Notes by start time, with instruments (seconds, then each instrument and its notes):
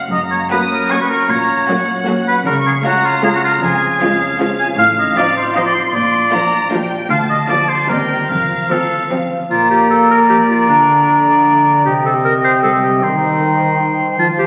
Already playing: harp A#3 F#4 C#5
0.11 double bass section F#1, cello section F#2, harp F#2, oboe D#5, violin section A#5
0.31 harp A#3, oboe C#5
0.51 viola section F#3 A#3, violin section C#4 F#4 D#6, harp F#4, oboe B4
0.71 oboe A#4, harp C#5
0.90 viola section F#3 A#3, violin section C#4 F#4 C#6, harp A#4, oboe C#5
1.01 oboe B4
1.09 harp F#4, oboe A#4
1.29 double bass section A#1, harp A#2, cello section A#2, oboe C#5, violin section A#5
1.49 harp C#4
1.68 viola section F#3 A#3, violin section C#4 F#4 F#5, harp F#4
1.88 harp C#5
2.07 viola section F#3 A#3, violin section C#4 F#4, harp F#4
2.28 harp C#4, oboe B4
2.46 double bass section C#2, harp C#3, cello section C#3, oboe A#4, violin section C#6
2.66 harp C#4, oboe G#4
2.85 viola section G#3, violin section C#4 F4 A#5, harp F4, oboe F#4
3.04 oboe F4, harp C#5
3.24 viola section G#3, violin section C#4 F4, harp F4, oboe G#4
3.35 oboe F#4
3.43 harp C#4, oboe F4
3.62 double bass section F1, harp F2, cello section F2, oboe G#4, violin section G#5
3.82 harp C#4
4.01 viola section F3 G#3, violin section C#4 F4 F5, harp F4
4.21 harp C#5
4.40 viola section F3 G#3, violin section C#4 F4 F5, harp F4
4.59 harp C#4, oboe G#5
4.78 double bass section A1, harp A2, cello section A2, oboe F5
4.97 harp D#4, oboe D#5
5.16 viola section F3 C4, violin section D#4 F4, harp F4, oboe D5
5.35 harp C5, oboe C5
5.55 viola section F3 C4, violin section D#4 F4 C6, oboe D#5
5.66 oboe D5
5.75 harp F4, oboe C5
5.94 double bass section A#1, cello section A#2, harp A#2, oboe D5
6.13 harp D4
6.33 viola section F3 A#3, violin section D4 F4 A#5, harp F4
6.52 harp A#4
6.71 viola section F3 A#3, violin section D4 F4 G5, harp D5
6.91 harp F4
7.10 cello section D2, double bass section D2, harp D3, oboe F5, violin section A5
7.29 harp D4, oboe D#5
7.49 viola section F3 A#3, violin section D4 F4, harp F4, oboe D5
7.69 harp A#4, oboe C5
7.88 cello section D#2, double bass section D#2, harp D#3, viola section G3 C4, violin section C4 D#4 G5, oboe A#4
8.08 harp G4 C5
8.29 double bass section F1, cello section F2, harp F3, oboe A#4, violin section F5
8.49 harp F4
8.70 viola section F3 C4, violin section C4, oboe A4, harp C5
8.90 harp F4
9.10 viola section F3 C4, violin section C4, harp F5
9.30 harp C5
9.50 harp A#2, french horn section A#3, clarinet F4, oboe D5, flute A#5, triangle
9.70 clarinet G4, harp A#4
9.90 clarinet A4, harp A4
10.11 clarinet A#4
10.29 harp F3, clarinet G4
10.49 clarinet F4, harp A#4
10.68 harp D3, french horn section D3, clarinet D4
10.88 harp A#4
11.07 harp A4
11.27 harp A#4
11.47 harp A#3
11.66 harp A#4
11.85 harp C3, french horn section C3, clarinet G4, oboe D#5, flute G5
12.05 clarinet A4, harp C5
12.25 clarinet A#4, harp A#4
12.44 harp C5, clarinet C5
12.63 harp G3, clarinet A4
12.83 clarinet G4, harp C5
13.02 french horn section D#3, harp D#3, clarinet D#4, oboe C5
13.21 harp C5
13.41 harp A#4
13.60 harp C5
13.80 harp D#4
13.99 harp C5
14.18 harp F3, french horn section F3, clarinet F4, flute A5
14.37 clarinet G4, harp C5